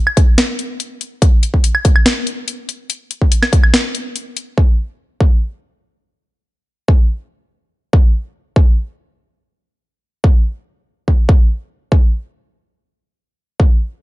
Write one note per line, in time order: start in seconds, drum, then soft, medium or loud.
0.07 high woodblock medium
0.17 kick loud
0.17 closed hi-hat medium
0.38 snare loud
0.38 closed hi-hat medium
0.59 closed hi-hat medium
0.80 closed hi-hat medium
1.01 closed hi-hat medium
1.22 kick loud
1.22 closed hi-hat medium
1.43 closed hi-hat medium
1.54 kick medium
1.64 closed hi-hat medium
1.75 high woodblock medium
1.85 kick loud
1.85 closed hi-hat medium
1.96 high woodblock medium
2.06 snare loud
2.06 closed hi-hat medium
2.27 closed hi-hat medium
2.48 closed hi-hat medium
2.69 closed hi-hat medium
2.90 closed hi-hat medium
3.11 closed hi-hat medium
3.22 kick medium
3.32 closed hi-hat medium
3.43 snare soft
3.43 high woodblock medium
3.53 kick loud
3.53 closed hi-hat medium
3.64 high woodblock medium
3.74 snare loud
3.74 closed hi-hat medium
3.95 closed hi-hat medium
4.16 closed hi-hat medium
4.37 closed hi-hat medium
4.58 kick loud
5.21 kick loud
6.88 kick loud
7.93 kick loud
8.56 kick loud
10.24 kick loud
11.08 kick medium
11.29 kick loud
11.92 kick loud
13.60 kick medium